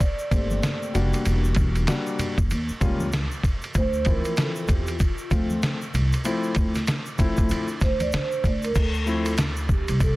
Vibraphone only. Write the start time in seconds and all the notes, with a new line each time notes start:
Already playing: D5
3.78 C5
4.09 A#4
4.41 A4
4.72 G4
4.91 F4
7.83 C5
8.02 D5
8.45 D5
8.64 A#4
8.77 A4
9.72 G4
10.03 A4